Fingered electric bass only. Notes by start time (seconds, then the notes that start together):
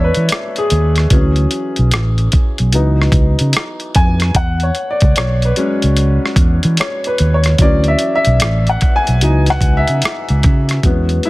Already playing: E2
0.17 E3
0.71 D#2
1.11 D2
1.79 B1
1.94 A1
2.60 B1
2.75 C#2
3.13 C#2
3.40 C#3
3.96 F2
4.36 E2
5.03 C#2
5.18 B1
5.84 C#2
6.37 E2
6.65 E3
7.20 D#2
7.60 D2
8.27 B1
8.42 A1
9.08 B1
9.23 C#2
9.62 C#2
9.89 C#3
10.04 muted fingered electric bass stroke
10.30 C#2
10.45 C#3
10.84 E2